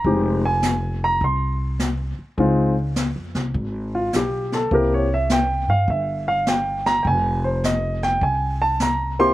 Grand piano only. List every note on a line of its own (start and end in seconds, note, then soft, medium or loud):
0.00 0.40 A#5 medium
0.05 0.40 G#3 medium
0.05 0.40 C4 soft
0.05 0.40 D#4 soft
0.05 0.40 G4 medium
0.45 0.99 G#5 medium
1.04 1.22 A#5 medium
1.24 1.77 C6 medium
2.38 2.73 G#3 medium
2.38 2.73 C4 medium
2.38 2.74 D#4 medium
2.38 2.74 F4 medium
3.95 4.13 F4 medium
4.16 4.52 G4 medium
4.54 4.72 A4 medium
4.72 5.06 A#3 medium
4.72 5.07 C4 soft
4.72 5.07 E4 soft
4.72 5.07 G4 medium
4.72 4.92 A#4 medium
4.94 5.11 C#5 medium
5.14 5.31 E5 medium
5.32 5.68 G5 medium
5.70 5.88 F5 medium
5.90 6.27 E5 medium
6.28 6.46 F5 medium
6.49 6.85 G5 medium
6.86 7.05 A#5 loud
7.03 7.07 G5 medium
7.07 7.44 G#5 medium
7.44 7.63 C5 medium
7.65 8.02 D#5 medium
8.03 8.22 G5 medium
8.23 8.60 G#5 medium
8.62 8.80 A5 medium
8.82 9.19 A#5 medium
9.19 9.34 A#3 medium
9.19 9.34 C4 medium
9.19 9.34 E4 medium
9.19 9.34 G4 medium
9.19 9.34 C6 loud